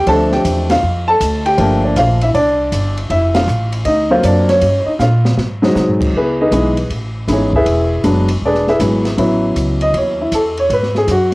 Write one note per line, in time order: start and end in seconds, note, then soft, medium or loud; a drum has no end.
0.07 0.43 D2 medium
0.07 0.65 F3 medium
0.07 0.65 A3 medium
0.07 0.65 C4 medium
0.07 0.65 D4 medium
0.07 0.31 A4 medium
0.07 0.33 A5 loud
0.07 kick soft
0.07 ride medium
0.32 0.68 G4 medium
0.32 0.71 G5 medium
0.32 snare soft
0.45 0.81 E2 medium
0.45 kick soft
0.45 hi-hat pedal soft
0.45 ride medium
0.70 1.06 F4 medium
0.70 1.09 F5 medium
0.70 snare medium
0.70 ride medium
0.83 1.19 F2 medium
1.08 1.44 A4 medium
1.08 1.47 A5 loud
1.20 1.57 D2 medium
1.20 kick soft
1.20 hi-hat pedal medium
1.20 ride medium
1.46 1.81 G4 medium
1.46 1.81 G5 medium
1.46 ride soft
1.58 1.95 G1 medium
1.58 2.16 F3 medium
1.58 2.16 A3 medium
1.58 2.17 A#3 medium
1.58 1.84 D4 medium
1.58 kick soft
1.58 ride medium
1.84 1.96 D4 medium
1.84 1.97 D5 medium
1.96 2.33 A#1 loud
1.96 2.21 F4 medium
1.96 2.20 F5 medium
1.96 kick soft
1.96 hi-hat pedal medium
1.96 ride medium
2.21 2.29 E4 medium
2.21 2.28 E5 medium
2.21 ride soft
2.34 2.71 C2 medium
2.34 2.94 D4 medium
2.34 2.93 D5 medium
2.34 kick soft
2.34 ride soft
2.72 3.09 G1 medium
2.72 kick soft
2.72 hi-hat pedal medium
2.72 ride medium
2.97 ride soft
3.10 3.47 F1 medium
3.10 3.35 E4 medium
3.10 3.34 E5 medium
3.10 kick soft
3.10 ride medium
3.35 3.83 F4 medium
3.35 3.87 F5 medium
3.35 snare medium
3.35 ride medium
3.47 3.84 A1 loud
3.47 hi-hat pedal medium
3.72 ride soft
3.85 4.22 D2 medium
3.85 4.10 D#4 medium
3.85 4.11 D#5 medium
3.85 kick soft
3.85 ride medium
4.10 4.59 F#3 medium
4.10 4.59 A#3 medium
4.10 4.59 C4 medium
4.10 4.59 F4 medium
4.10 4.23 C5 medium
4.23 4.60 F#2 medium
4.23 4.48 D4 medium
4.23 4.47 D5 medium
4.23 kick soft
4.23 hi-hat pedal medium
4.23 ride medium
4.49 4.79 C#4 medium
4.49 4.78 C#5 medium
4.49 snare soft
4.49 ride soft
4.61 4.85 G2 medium
4.61 kick soft
4.61 ride medium
4.80 4.87 C#5 medium
4.86 4.93 D#4 medium
4.86 4.91 D#5 medium
4.86 muted upright bass stroke soft
4.99 5.36 A#2 medium
4.99 5.36 F4 medium
4.99 5.35 F5 medium
4.99 snare soft
4.99 hi-hat pedal medium
5.25 snare medium
5.37 5.74 G#2 medium
5.37 snare medium
5.62 6.11 F#3 medium
5.62 6.11 G#3 medium
5.62 6.11 C4 medium
5.62 6.11 D#4 medium
5.62 snare medium
5.75 5.88 C3 medium
5.75 snare medium
5.75 hi-hat pedal medium
5.88 6.01 G#2 soft
6.01 6.13 F#2 medium
6.01 kick medium
6.01 crash medium
6.13 6.50 C#2 medium
6.13 6.40 G#4 medium
6.13 6.40 B4 medium
6.13 kick soft
6.17 6.40 B3 medium
6.17 6.40 E4 medium
6.41 6.52 D#4 medium
6.41 6.88 G#4 medium
6.41 6.88 B4 medium
6.41 6.87 D#5 medium
6.51 6.88 B1 medium
6.51 6.74 E3 medium
6.51 6.74 G#3 medium
6.51 6.75 B3 medium
6.51 6.75 D#4 medium
6.51 kick soft
6.51 hi-hat pedal medium
6.51 ride medium
6.77 ride soft
6.90 7.27 A1 medium
6.90 kick soft
6.90 ride soft
7.28 7.64 G#1 medium
7.28 7.50 E3 medium
7.28 7.50 G#3 soft
7.28 7.51 B3 medium
7.28 7.51 D#4 medium
7.28 kick soft
7.28 snare soft
7.28 hi-hat pedal medium
7.28 ride medium
7.32 7.54 C#4 medium
7.32 7.54 E4 medium
7.32 7.54 G#4 medium
7.32 7.54 C#5 medium
7.53 8.02 E4 medium
7.53 8.02 G#4 medium
7.53 8.02 B4 medium
7.53 8.02 E5 medium
7.53 kick medium
7.66 8.02 E1 medium
7.66 kick soft
7.66 ride medium
8.04 8.41 F#1 medium
8.04 8.26 F#3 medium
8.04 8.26 G#3 medium
8.04 8.27 B3 medium
8.04 8.27 D4 medium
8.04 kick soft
8.04 hi-hat pedal medium
8.04 ride medium
8.28 ride medium
8.41 8.78 E1 medium
8.41 kick soft
8.45 8.68 D4 medium
8.45 8.67 G#4 medium
8.45 8.67 B4 medium
8.45 8.68 D5 medium
8.55 snare soft
8.67 8.79 E4 medium
8.67 9.15 G#4 medium
8.67 9.15 B4 medium
8.67 9.15 E5 medium
8.67 snare soft
8.79 9.16 G#1 medium
8.79 9.02 F#3 medium
8.79 9.03 G#3 medium
8.79 9.03 B3 soft
8.79 9.03 E4 medium
8.79 kick soft
8.79 hi-hat pedal medium
8.79 ride medium
9.05 snare medium
9.05 ride soft
9.17 9.55 A1 medium
9.17 10.24 F#3 medium
9.17 10.24 B3 medium
9.17 10.24 C#4 medium
9.17 10.20 E4 medium
9.17 kick soft
9.17 ride medium
9.56 9.93 C#2 medium
9.56 kick soft
9.56 hi-hat pedal soft
9.56 ride medium
9.81 9.94 D#5 medium
9.81 ride soft
9.94 10.31 D#2 medium
9.94 10.20 C#5 medium
9.94 kick soft
9.94 ride medium
10.21 10.33 E4 medium
10.32 10.69 E2 medium
10.32 10.58 A4 medium
10.32 kick soft
10.32 hi-hat pedal medium
10.32 ride medium
10.57 10.71 C#5 medium
10.57 ride soft
10.70 11.07 G#2 medium
10.70 10.96 B4 medium
10.70 kick soft
10.70 ride medium
10.83 snare soft
10.95 11.09 G#4 medium
10.95 snare soft
11.07 11.34 F#2 medium
11.07 11.34 F#4 medium
11.07 kick soft
11.07 hi-hat pedal medium
11.07 ride medium